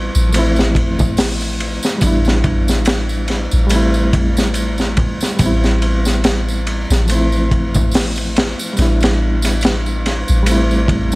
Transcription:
Already playing: A1 G3 B3 C4 E4
0.15 A1, tambourine
0.29 F3 A3, tambourine
0.34 C4, ride
0.39 E4
0.56 snare, tambourine
0.75 kick, ride
0.99 kick, tambourine, low conga
1.17 snare, open hi-hat, tambourine
1.41 ride, tambourine
1.60 ride
1.83 snare, tambourine
1.98 A1 G3 B3, kick, ride, tambourine
2.04 D4 E4
2.25 snare, tambourine
2.44 kick, ride
2.68 snare, tambourine
2.85 snare, ride, tambourine
3.09 tambourine
3.28 snare, ride
3.51 A1, tambourine
3.67 G3 A3, ride, tambourine
3.73 C4 E4
3.94 tambourine
4.13 kick, ride
4.37 snare, tambourine
4.54 ride, tambourine
4.78 snare, tambourine
4.97 kick, ride, low conga
5.21 snare, tambourine
5.37 A1 G3 B3, kick, ride, tambourine
5.42 C4 E4
5.64 snare, tambourine
5.82 ride
6.05 snare, tambourine
6.24 snare, ride, tambourine
6.48 tambourine
6.67 ride
6.90 A1, snare, tambourine
7.06 F3 A3, ride, tambourine
7.12 C4 E4
7.32 tambourine
7.51 kick, ride
7.74 kick, tambourine, low conga
7.91 snare, open hi-hat, tambourine
8.16 ride, tambourine
8.36 snare, ride
8.59 tambourine
8.73 G3 B3, tambourine
8.78 A1 D4 E4, snare, ride
9.01 snare, ride, tambourine
9.42 snare, ride, tambourine
9.61 snare, ride, tambourine
9.86 tambourine
10.06 snare, ride
10.28 A1, tambourine
10.43 G3 A3, ride, tambourine
10.49 C4 E4
10.71 tambourine
10.88 kick, ride
11.12 tambourine

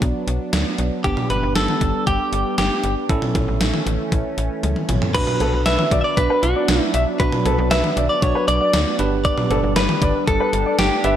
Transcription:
Already playing: F#3 B3 D4 F#4
0.02 B1, kick, closed hi-hat
0.27 B1, closed hi-hat
0.53 D2, snare, closed hi-hat
0.78 B1, closed hi-hat
1.04 G1 G3 B3 D4 G4, kick, closed hi-hat
1.17 mid tom
1.30 G1 B4, closed hi-hat
1.43 G1
1.55 G1 A4, snare, closed hi-hat
1.68 mid tom
1.81 G1, kick, closed hi-hat
2.07 G1 G4, kick, closed hi-hat
2.33 G1, closed hi-hat
2.58 G1 G4, snare, closed hi-hat
2.84 G1, closed hi-hat
3.09 A1 E3 A3 C#4 E4 A4, kick, closed hi-hat
3.22 mid tom
3.35 A1, kick, closed hi-hat, mid tom
3.48 A1
3.61 A1, snare, closed hi-hat
3.74 mid tom
3.86 A1, closed hi-hat
4.12 A1, kick, closed hi-hat
4.38 A1, closed hi-hat
4.63 C#2, closed hi-hat, high tom
4.76 mid tom
4.89 A1, closed hi-hat, mid tom
5.02 floor tom
5.15 B1 F#3 B3 D4 F#4 B4, kick, closed hi-hat, crash
5.27 mid tom
5.40 B1 A4, closed hi-hat, cowbell
5.53 B1
5.66 B1 B4 E5, snare, closed hi-hat
5.79 mid tom
5.91 B1 D5, kick, closed hi-hat
6.01 D5 E5
6.17 B1 B4, kick, closed hi-hat
6.30 B4
6.43 B1 F#4, closed hi-hat
6.56 D5
6.68 B1, snare, closed hi-hat
6.94 B1 E5, closed hi-hat
7.20 B1 D4 F#4 B4, kick, closed hi-hat
7.32 mid tom
7.45 B1 A4, closed hi-hat, cowbell
7.58 B1
7.71 B1 B4 E5, snare, closed hi-hat
7.84 mid tom
7.97 B1 D5, closed hi-hat
8.09 D5
8.22 B1 D4 F#4 C#5 D5, kick, closed hi-hat
8.35 B4
8.48 B1 D5, closed hi-hat
8.61 D5
8.73 D2, snare, closed hi-hat
8.99 G1 G3 D4 G4 B4, closed hi-hat
9.25 D5, kick, closed hi-hat
9.38 mid tom
9.50 G1 A4, closed hi-hat, cowbell
9.63 G1
9.76 G1 B4, snare, closed hi-hat
9.89 mid tom
10.02 G1 D5, kick, closed hi-hat
10.27 G1 A4, kick, closed hi-hat
10.40 B4
10.53 G1, closed hi-hat
10.66 D5
10.79 G1 G4, snare, closed hi-hat
11.04 G1 D4 G4 B4 E5, closed hi-hat

